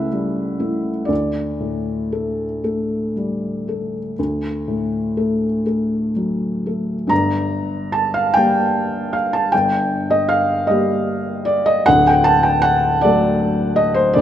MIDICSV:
0, 0, Header, 1, 2, 480
1, 0, Start_track
1, 0, Key_signature, -2, "minor"
1, 0, Tempo, 964630
1, 545, Time_signature, 12, 3, 24, 8
1, 545, Tempo, 1025641
1, 1985, Tempo, 977199
1, 3425, Tempo, 821918
1, 4385, Tempo, 779221
1, 6785, Tempo, 758534
1, 7779, End_track
2, 0, Start_track
2, 0, Title_t, "Felt piano"
2, 0, Program_c, 0, 0
2, 0, Control_c, 0, 64, 127
2, 0, Note_on_c, 0, 37, 60
2, 0, Note_on_c, 0, 49, 45
2, 0, Note_on_c, 0, 57, 40
2, 0, Note_on_c, 0, 64, 44
2, 0, Note_on_c, 0, 76, 73
2, 0, Note_on_c, 0, 78, 82
2, 61, Note_on_c, 0, 55, 37
2, 295, Note_off_c, 0, 57, 0
2, 295, Note_on_c, 0, 57, 32
2, 298, Note_off_c, 0, 64, 0
2, 298, Note_on_c, 0, 64, 37
2, 444, Note_off_c, 0, 55, 0
2, 523, Note_off_c, 0, 57, 0
2, 523, Note_on_c, 0, 74, 62
2, 525, Note_off_c, 0, 64, 0
2, 526, Note_off_c, 0, 37, 0
2, 538, Note_off_c, 0, 76, 0
2, 539, Note_on_c, 0, 38, 46
2, 555, Control_c, 0, 64, 0
2, 557, Note_off_c, 0, 78, 0
2, 558, Note_off_c, 0, 49, 0
2, 641, Control_c, 0, 64, 127
2, 783, Note_on_c, 0, 45, 35
2, 1026, Note_on_c, 0, 57, 32
2, 1026, Note_on_c, 0, 69, 36
2, 1175, Note_off_c, 0, 45, 0
2, 1253, Note_off_c, 0, 57, 0
2, 1253, Note_off_c, 0, 69, 0
2, 1267, Note_on_c, 0, 57, 35
2, 1268, Note_on_c, 0, 69, 39
2, 1492, Note_off_c, 0, 57, 0
2, 1492, Note_off_c, 0, 69, 0
2, 1514, Note_on_c, 0, 55, 32
2, 1753, Note_on_c, 0, 57, 31
2, 1758, Note_on_c, 0, 69, 34
2, 1893, Note_off_c, 0, 55, 0
2, 1964, Note_off_c, 0, 38, 0
2, 1968, Note_off_c, 0, 57, 0
2, 1970, Note_off_c, 0, 69, 0
2, 1994, Note_on_c, 0, 38, 45
2, 1996, Control_c, 0, 64, 0
2, 2094, Control_c, 0, 64, 127
2, 2233, Note_on_c, 0, 45, 33
2, 2475, Note_on_c, 0, 69, 35
2, 2477, Note_on_c, 0, 57, 35
2, 2616, Note_off_c, 0, 45, 0
2, 2693, Note_off_c, 0, 69, 0
2, 2694, Note_off_c, 0, 57, 0
2, 2698, Note_off_c, 0, 74, 0
2, 2715, Note_on_c, 0, 57, 31
2, 2718, Note_on_c, 0, 69, 35
2, 2939, Note_off_c, 0, 57, 0
2, 2940, Note_off_c, 0, 69, 0
2, 2962, Note_on_c, 0, 54, 34
2, 3207, Note_on_c, 0, 57, 29
2, 3210, Note_on_c, 0, 69, 34
2, 3345, Note_off_c, 0, 54, 0
2, 3407, Note_off_c, 0, 57, 0
2, 3409, Note_off_c, 0, 38, 0
2, 3409, Note_off_c, 0, 69, 0
2, 3410, Note_on_c, 0, 43, 59
2, 3420, Note_on_c, 0, 82, 86
2, 3435, Note_on_c, 0, 31, 51
2, 3436, Control_c, 0, 64, 0
2, 3531, Control_c, 0, 64, 127
2, 3904, Note_on_c, 0, 81, 83
2, 3910, Note_off_c, 0, 82, 0
2, 4029, Note_off_c, 0, 81, 0
2, 4030, Note_on_c, 0, 77, 79
2, 4145, Note_on_c, 0, 79, 96
2, 4150, Note_off_c, 0, 77, 0
2, 4162, Note_on_c, 0, 55, 46
2, 4166, Note_on_c, 0, 58, 47
2, 4166, Note_on_c, 0, 67, 54
2, 4620, Note_on_c, 0, 77, 76
2, 4621, Note_off_c, 0, 79, 0
2, 4741, Note_off_c, 0, 77, 0
2, 4745, Note_on_c, 0, 81, 76
2, 4828, Note_off_c, 0, 43, 0
2, 4843, Note_off_c, 0, 31, 0
2, 4843, Note_off_c, 0, 55, 0
2, 4845, Note_off_c, 0, 58, 0
2, 4845, Note_off_c, 0, 67, 0
2, 4860, Note_on_c, 0, 79, 87
2, 4863, Note_off_c, 0, 81, 0
2, 4872, Control_c, 0, 64, 0
2, 4875, Note_on_c, 0, 31, 56
2, 4875, Note_on_c, 0, 43, 49
2, 4952, Control_c, 0, 64, 127
2, 5221, Note_off_c, 0, 79, 0
2, 5221, Note_on_c, 0, 75, 84
2, 5333, Note_on_c, 0, 77, 89
2, 5341, Note_off_c, 0, 75, 0
2, 5569, Note_on_c, 0, 75, 81
2, 5575, Note_off_c, 0, 77, 0
2, 5584, Note_on_c, 0, 55, 44
2, 5588, Note_on_c, 0, 58, 44
2, 5592, Note_on_c, 0, 67, 49
2, 6050, Note_on_c, 0, 74, 85
2, 6054, Note_off_c, 0, 75, 0
2, 6177, Note_off_c, 0, 74, 0
2, 6178, Note_on_c, 0, 75, 90
2, 6281, Note_off_c, 0, 55, 0
2, 6283, Note_off_c, 0, 58, 0
2, 6284, Note_off_c, 0, 31, 0
2, 6284, Note_off_c, 0, 43, 0
2, 6284, Note_off_c, 0, 67, 0
2, 6301, Note_off_c, 0, 75, 0
2, 6301, Note_on_c, 0, 78, 108
2, 6314, Note_on_c, 0, 38, 68
2, 6315, Control_c, 0, 64, 0
2, 6318, Note_on_c, 0, 26, 62
2, 6414, Control_c, 0, 64, 127
2, 6423, Note_off_c, 0, 78, 0
2, 6433, Note_on_c, 0, 79, 83
2, 6538, Note_on_c, 0, 81, 98
2, 6549, Note_off_c, 0, 79, 0
2, 6654, Note_on_c, 0, 79, 88
2, 6661, Note_off_c, 0, 81, 0
2, 6768, Note_on_c, 0, 78, 98
2, 6779, Note_off_c, 0, 79, 0
2, 7019, Note_on_c, 0, 74, 98
2, 7021, Note_off_c, 0, 78, 0
2, 7039, Note_on_c, 0, 57, 57
2, 7040, Note_on_c, 0, 54, 52
2, 7040, Note_on_c, 0, 69, 60
2, 7491, Note_on_c, 0, 75, 92
2, 7504, Note_off_c, 0, 74, 0
2, 7608, Note_on_c, 0, 72, 89
2, 7618, Note_off_c, 0, 75, 0
2, 7724, Note_off_c, 0, 38, 0
2, 7724, Note_off_c, 0, 54, 0
2, 7724, Note_off_c, 0, 57, 0
2, 7724, Note_off_c, 0, 69, 0
2, 7726, Note_off_c, 0, 26, 0
2, 7728, Note_on_c, 0, 74, 93
2, 7735, Note_off_c, 0, 72, 0
2, 7745, Note_on_c, 0, 26, 60
2, 7746, Note_on_c, 0, 38, 66
2, 7754, Control_c, 0, 64, 0
2, 7779, Note_off_c, 0, 26, 0
2, 7779, Note_off_c, 0, 38, 0
2, 7779, Note_off_c, 0, 74, 0
2, 7779, End_track
0, 0, End_of_file